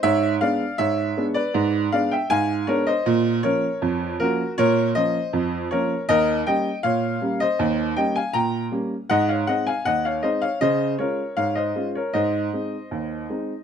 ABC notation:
X:1
M:2/4
L:1/16
Q:1/4=79
K:Cphr
V:1 name="Upright piano"
[d_f]2 [=d=f]2 [_d_f]3 [_c=d]- | [_c=d]2 [df] [_fg] [=fa]2 [B_d] [=ce]- | [K:Bbm] [ce]2 [Bd]4 [GB]2 | [Bd]2 [ce]4 [Bd]2 |
[Be]2 [e=g]2 [df]3 [ce]- | [ce]2 [e=g] [fa] [gb]2 z2 | [eg] [df] [eg] [fa] [eg] [df] [ce] [df] | [ce]2 [Bd]2 [df] [ce]2 [Bd] |
[ce]8 |]
V:2 name="Upright piano"
A,,2 [A,_C=D]2 A,,2 [A,CD]2 | A,,2 [A,_C=D]2 A,,2 [A,CD]2 | [K:Bbm] B,,2 [F,B,D]2 F,,2 [F,B,D]2 | B,,2 [F,B,D]2 F,,2 [F,B,D]2 |
E,,2 [=G,B,D]2 B,,2 [G,B,D]2 | E,,2 [=G,B,D]2 B,,2 [G,B,D]2 | A,,2 [A,CE]2 E,,2 [A,CE]2 | D,2 [A,DF]2 A,,2 [A,DF]2 |
A,,2 [A,CE]2 E,,2 [A,CE]2 |]